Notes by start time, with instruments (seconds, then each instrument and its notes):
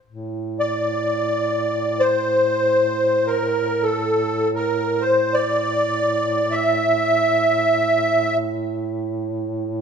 0.07 duduk A2
0.59 accordion D5
2.00 accordion C5
3.27 accordion A#4
3.83 accordion A4
4.55 accordion A#4
5.01 accordion C5
5.34 accordion D5
6.51 accordion E5